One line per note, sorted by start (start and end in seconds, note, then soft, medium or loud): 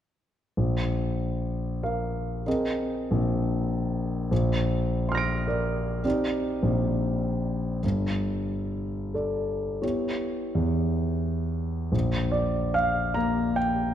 0.57 2.42 A#1 soft
1.83 2.43 A#4 soft
1.83 2.43 F5 soft
2.46 4.28 C4 soft
2.46 4.29 G#4 soft
2.46 2.48 A#4 soft
2.46 4.29 A#4 soft
2.46 4.29 D#5 soft
3.11 4.29 A#1 soft
4.31 6.00 A#1 soft
5.09 6.01 C6 soft
5.09 6.02 F6 soft
5.15 6.04 A#6 soft
5.15 6.05 D7 soft
5.47 6.01 A#4 soft
5.47 6.01 D5 soft
6.04 7.79 C4 soft
6.04 7.79 D#4 soft
6.04 7.80 G4 soft
6.04 7.80 D5 soft
6.63 7.79 A#1 soft
7.83 9.78 G1 soft
9.14 9.79 A4 soft
9.14 9.80 D5 soft
9.82 11.89 B3 soft
9.82 11.90 E4 soft
9.82 11.90 G4 soft
9.82 9.83 C#5 soft
9.82 11.90 C#5 soft
10.55 11.90 E2 soft
11.92 13.94 A#1 soft
12.31 12.75 D5 soft
12.74 13.16 F5 medium
13.14 13.94 A#3 soft
13.14 13.57 A#5 medium
13.56 13.94 G5 medium